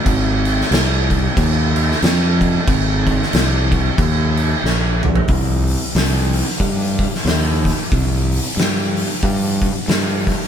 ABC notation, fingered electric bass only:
X:1
M:4/4
L:1/8
Q:"Swing" 1/4=92
K:Cm
V:1 name="Fingered electric bass" clef=bass
A,,,2 C,,2 E,,2 F,,2 | A,,,2 C,,2 E,,2 B,,,2 | C,,2 C,,2 G,,2 E,,2 | C,,2 G,,2 G,,2 G,,2 |]